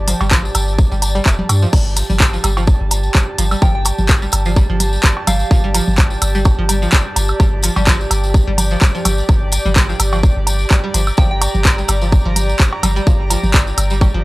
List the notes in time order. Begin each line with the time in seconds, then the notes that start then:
Already playing: G1 G4 D5 A5
0.08 F3, open hi-hat, tambourine, low conga, low woodblock
0.21 G1 G3, tambourine, cowbell
0.31 F3, kick, clap, tambourine, low conga, low woodblock
0.45 tambourine
0.55 G1, open hi-hat, tambourine, high woodblock, low woodblock
0.68 tambourine
0.79 kick, tambourine, low woodblock
0.92 G1 G3, tambourine
1.02 open hi-hat, tambourine, low woodblock
1.15 G3, tambourine
1.26 F1 A3, kick, clap, tambourine, low woodblock
1.39 G3, low conga
1.49 G2, open hi-hat, tambourine, cowbell, high woodblock, low woodblock
1.62 F3, tambourine
1.73 G1 G4, kick, crash, tambourine, low woodblock
1.85 A5
1.96 D5, open hi-hat, tambourine, low woodblock
2.10 G1 G3, tambourine, low conga
2.20 kick, clap, tambourine, low woodblock
2.33 F3, tambourine
2.44 G1 G3, open hi-hat, tambourine, high woodblock, low woodblock
2.57 F3, tambourine, cowbell
2.67 kick, tambourine, low woodblock
2.81 G1
2.91 open hi-hat, tambourine, low woodblock
3.03 tambourine
3.15 G1 G3, kick, clap, tambourine, low woodblock
3.38 G1 F3, open hi-hat, tambourine, low woodblock
3.51 G3, tambourine, high woodblock
3.62 G1 F3 G5, kick, tambourine, low woodblock
3.75 G5
3.85 open hi-hat, tambourine, cowbell, low woodblock
3.98 G1, tambourine, low conga
4.09 kick, clap, tambourine, low woodblock
4.22 G3, tambourine
4.32 G1, open hi-hat, tambourine, high woodblock, low woodblock
4.45 F3, tambourine
4.56 G3, kick, tambourine, low woodblock
4.69 G1 F3
4.80 open hi-hat, tambourine, low conga, low woodblock
4.93 tambourine
5.03 G1, kick, clap, tambourine, low woodblock
5.17 cowbell
5.27 G1 G3 F5, open hi-hat, tambourine, low conga, high woodblock, low woodblock
5.40 tambourine
5.51 G1 F3, kick, tambourine, low woodblock
5.64 G3
5.75 F3, open hi-hat, tambourine, low woodblock
5.88 G1, tambourine, low conga
5.98 kick, clap, tambourine, low woodblock
6.10 tambourine
6.22 G1, open hi-hat, tambourine, high woodblock, low woodblock
6.35 G3, tambourine
6.45 kick, tambourine, cowbell, low woodblock
6.58 G1 F3
6.69 G3, open hi-hat, tambourine, low woodblock
6.82 F3, tambourine
6.92 G1, kick, clap, tambourine, low woodblock
7.16 G1, open hi-hat, tambourine, low woodblock
7.28 tambourine, high woodblock
7.40 G1 G3, kick, tambourine, low woodblock
7.63 F3, open hi-hat, tambourine, low woodblock
7.76 G1 G3, tambourine, cowbell, low conga
7.87 F3, kick, clap, tambourine, low woodblock
8.01 tambourine
8.11 G1, open hi-hat, tambourine, high woodblock, low woodblock
8.23 tambourine
8.34 kick, tambourine, low woodblock
8.47 G1 G3
8.58 open hi-hat, tambourine, low conga, low woodblock
8.70 F3, tambourine
8.82 G1 G3, kick, clap, tambourine, low woodblock
8.95 F3, tambourine
9.05 G1, open hi-hat, tambourine, cowbell, low conga, high woodblock, low woodblock
9.18 tambourine
9.29 G1, kick, tambourine, low woodblock
9.52 open hi-hat, tambourine, low woodblock
9.65 G1 G3, tambourine, low conga
9.76 G3, kick, clap, tambourine, low woodblock
9.89 F3, tambourine
10.00 G1, open hi-hat, tambourine, high woodblock, low woodblock
10.13 F3, tambourine, cowbell
10.23 kick, tambourine, low woodblock
10.36 G1
10.47 open hi-hat, tambourine, low woodblock
10.59 tambourine
10.70 G1 G3 A#5, kick, clap, tambourine, low woodblock
10.84 G3
10.94 G1 F3, open hi-hat, tambourine, low woodblock
11.07 tambourine, high woodblock
11.17 G1 F3 G5, kick, tambourine, low woodblock
11.31 G5
11.41 open hi-hat, tambourine, cowbell, low woodblock
11.54 G1, tambourine, low conga
11.65 kick, clap, tambourine, low woodblock
11.78 G3, tambourine
11.88 G1 G3, open hi-hat, tambourine, high woodblock, low woodblock
12.01 F3, tambourine
12.12 kick, tambourine, low woodblock
12.25 G1 F3
12.36 open hi-hat, tambourine, low conga, low woodblock
12.49 tambourine
12.59 G1, kick, clap, tambourine, low woodblock
12.73 cowbell
12.83 G1 G3, open hi-hat, tambourine, low conga, high woodblock, low woodblock
12.96 G3, tambourine
13.07 G1 F3, kick, tambourine, low woodblock
13.30 F3, open hi-hat, tambourine, low woodblock
13.43 G1, tambourine, low conga
13.54 kick, clap, tambourine, low woodblock
13.67 tambourine
13.78 G1, open hi-hat, tambourine, high woodblock, low woodblock
13.90 G3, tambourine
14.01 G3, kick, tambourine, cowbell, low woodblock
14.14 G1 F3